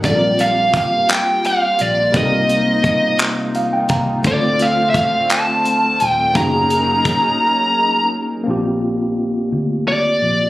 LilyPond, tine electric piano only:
\new Staff \with { instrumentName = "Tine electric piano" } { \time 6/8 \key bes \major \tempo 4. = 57 << { r2. | r2 f''16 g''16 bes''8 | r2. | r2. |
r2. | } \\ { <g c' d' f' a' bes'>2. | <g bes c' ees' a' bes'>2. | <a c' d' f' a'>2. | <bes des' ees' ges' aes'>2. |
<bes c' d' f' g'>2. | } >> }